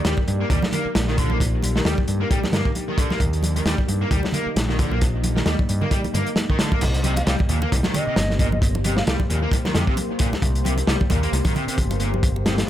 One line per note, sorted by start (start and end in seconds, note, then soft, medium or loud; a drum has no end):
0.00 6.78 A#3 medium
0.00 6.78 D#4 medium
0.00 6.78 G4 medium
0.00 3.17 D5 medium
0.05 0.13 D#2 loud
0.05 0.13 G3 medium
0.05 snare loud
0.05 closed hi-hat medium
0.17 kick medium
0.17 high conga medium
0.27 0.43 G2 loud
0.27 closed hi-hat medium
0.40 0.46 A#3 medium
0.50 0.58 D#2 loud
0.50 0.58 G3 loud
0.50 kick loud
0.50 closed hi-hat medium
0.62 snare medium
0.62 high conga loud
0.72 0.84 A#3 medium
0.72 closed hi-hat medium
0.72 low conga medium
0.85 muted picked electric bass stroke soft
0.95 1.80 A#1 loud
0.95 snare loud
0.95 closed hi-hat medium
0.95 high conga medium
1.08 1.17 D#3 medium
1.08 snare soft
1.18 1.30 D3 medium
1.18 kick loud
1.18 closed hi-hat medium
1.30 1.37 A#3 medium
1.30 high conga medium
1.40 kick medium
1.40 closed hi-hat medium
1.62 closed hi-hat medium
1.62 high conga medium
1.76 1.79 D#3 medium
1.76 snare medium
1.85 1.93 D#2 loud
1.85 1.93 G3 medium
1.85 snare loud
1.85 closed hi-hat medium
1.98 kick medium
1.98 high conga medium
2.08 2.23 G2 medium
2.08 closed hi-hat medium
2.21 2.27 A#3 medium
2.31 2.38 G3 loud
2.31 kick loud
2.31 closed hi-hat medium
2.43 snare medium
2.43 high conga medium
2.52 2.61 G2 medium
2.52 2.65 A#3 medium
2.52 snare loud
2.52 closed hi-hat medium
2.52 low conga medium
2.65 kick medium
2.75 closed hi-hat medium
2.75 high conga medium
2.88 2.97 D#3 medium
2.98 3.10 D3 medium
2.98 kick loud
2.98 closed hi-hat medium
3.10 3.17 A#3 medium
3.10 snare soft
3.10 high conga medium
3.20 3.60 D#2 loud
3.20 6.78 D#5 medium
3.20 kick medium
3.20 closed hi-hat medium
3.33 closed hi-hat soft
3.43 closed hi-hat medium
3.43 high conga medium
3.56 3.60 D#3 medium
3.56 closed hi-hat soft
3.66 3.74 D#2 loud
3.66 3.74 G3 medium
3.66 snare loud
3.66 closed hi-hat medium
3.78 kick medium
3.78 high conga medium
3.88 4.04 G2 medium
3.88 closed hi-hat medium
4.01 4.07 A#3 medium
4.11 4.19 D#2 loud
4.11 4.19 G3 loud
4.11 kick loud
4.11 closed hi-hat medium
4.23 snare soft
4.23 high conga medium
4.32 4.45 A#3 medium
4.32 closed hi-hat medium
4.32 low conga medium
4.46 muted picked electric bass stroke soft
4.56 5.41 A#1 loud
4.56 snare loud
4.56 closed hi-hat medium
4.56 high conga medium
4.69 4.78 D#3 medium
4.69 snare soft
4.79 4.90 D3 medium
4.79 kick loud
4.79 closed hi-hat medium
4.91 4.98 A#3 medium
4.91 high conga medium
5.01 kick loud
5.01 closed hi-hat medium
5.24 closed hi-hat medium
5.24 high conga medium
5.36 5.40 D#3 medium
5.36 snare medium
5.46 5.54 D#2 loud
5.46 5.54 G3 medium
5.46 snare loud
5.46 closed hi-hat medium
5.59 kick loud
5.59 high conga medium
5.69 5.84 G2 medium
5.69 closed hi-hat medium
5.81 5.88 A#3 medium
5.81 low conga medium
5.91 5.99 G3 loud
5.91 kick medium
5.91 closed hi-hat medium
6.04 closed hi-hat soft
6.04 high conga medium
6.14 6.22 G2 medium
6.14 6.26 A#3 medium
6.14 closed hi-hat medium
6.14 low conga medium
6.26 closed hi-hat soft
6.36 snare loud
6.36 closed hi-hat medium
6.36 high conga medium
6.49 6.59 D#3 medium
6.49 kick medium
6.59 6.71 D3 medium
6.59 snare loud
6.59 closed hi-hat medium
6.72 6.78 A#3 medium
6.72 kick medium
6.72 high conga medium
6.81 7.22 C2 loud
6.81 12.70 A#3 medium
6.81 12.70 G4 medium
6.81 12.70 C5 medium
6.81 kick loud
6.81 closed hi-hat medium
6.81 crash medium
6.81 muted conga medium
6.94 closed hi-hat soft
7.04 7.12 C3 medium
7.04 closed hi-hat medium
7.04 high conga medium
7.16 7.23 F5 medium
7.16 closed hi-hat soft
7.16 muted conga medium
7.27 7.35 C2 loud
7.27 7.35 G3 medium
7.27 7.35 F5 medium
7.27 snare loud
7.27 closed hi-hat medium
7.39 kick medium
7.39 high conga medium
7.49 7.65 D#2 medium
7.49 7.57 A#2 medium
7.49 closed hi-hat medium
7.62 7.68 A#3 loud
7.62 muted conga medium
7.72 7.80 C2 loud
7.72 kick loud
7.72 closed hi-hat medium
7.83 7.91 D#3 loud
7.83 snare medium
7.83 high conga loud
7.94 8.03 C3 medium
7.94 8.38 D#5 medium
7.94 closed hi-hat medium
7.94 muted conga medium
7.94 low conga medium
8.07 8.13 C3 medium
8.07 muted picked electric bass stroke soft
8.16 9.01 G1 loud
8.16 snare loud
8.16 closed hi-hat medium
8.16 high conga medium
8.30 snare soft
8.39 8.48 A#2 medium
8.39 8.48 D#5 medium
8.39 kick loud
8.39 closed hi-hat medium
8.39 muted conga medium
8.52 8.59 D#5 medium
8.52 high conga medium
8.62 kick loud
8.62 closed hi-hat medium
8.75 muted conga medium
8.84 8.93 C3 medium
8.84 closed hi-hat medium
8.84 high conga medium
8.97 9.04 F5 medium
8.97 snare medium
9.07 9.15 C2 loud
9.07 9.15 G3 medium
9.07 9.15 F5 medium
9.07 snare loud
9.07 closed hi-hat medium
9.20 kick loud
9.20 muted conga medium
9.20 high conga medium
9.30 9.45 D#2 loud
9.30 9.38 A#2 medium
9.30 closed hi-hat medium
9.42 9.48 A#3 loud
9.52 kick loud
9.52 closed hi-hat medium
9.52 muted conga medium
9.65 9.71 D#3 loud
9.65 snare medium
9.65 high conga loud
9.75 9.83 F2 medium
9.75 9.83 C3 medium
9.75 snare loud
9.75 closed hi-hat medium
9.75 low conga medium
9.87 9.94 C3 medium
9.87 kick medium
9.97 closed hi-hat medium
9.97 muted conga medium
9.97 high conga medium
10.19 10.28 A#2 medium
10.19 kick loud
10.19 closed hi-hat medium
10.33 snare soft
10.33 muted conga medium
10.33 high conga loud
10.42 10.82 C2 loud
10.42 kick loud
10.42 closed hi-hat medium
10.55 closed hi-hat soft
10.65 10.73 C3 medium
10.65 closed hi-hat medium
10.65 high conga loud
10.78 closed hi-hat soft
10.78 muted conga medium
10.87 10.96 C2 loud
10.87 10.95 G3 medium
10.87 snare loud
10.87 closed hi-hat medium
11.00 kick medium
11.00 high conga medium
11.10 11.26 D#2 medium
11.10 11.18 A#2 medium
11.10 kick medium
11.10 closed hi-hat medium
11.10 muted conga medium
11.23 11.29 A#3 loud
11.23 closed hi-hat soft
11.32 11.41 C2 loud
11.32 closed hi-hat medium
11.45 11.52 D#3 loud
11.45 kick loud
11.45 closed hi-hat medium
11.45 high conga loud
11.55 11.63 C3 medium
11.55 closed hi-hat soft
11.55 muted conga medium
11.55 low conga medium
11.68 11.74 C3 medium
11.68 muted picked electric bass stroke soft
11.68 closed hi-hat medium
11.78 12.62 G1 loud
11.78 kick medium
11.78 closed hi-hat medium
11.78 high conga medium
11.91 closed hi-hat soft
11.91 muted conga medium
12.00 12.08 A#2 medium
12.00 closed hi-hat medium
12.14 high conga medium
12.23 kick loud
12.23 closed hi-hat medium
12.36 muted conga soft
12.46 12.54 C3 medium
12.46 snare loud
12.46 closed hi-hat medium
12.46 high conga medium
12.58 snare loud
12.58 closed hi-hat medium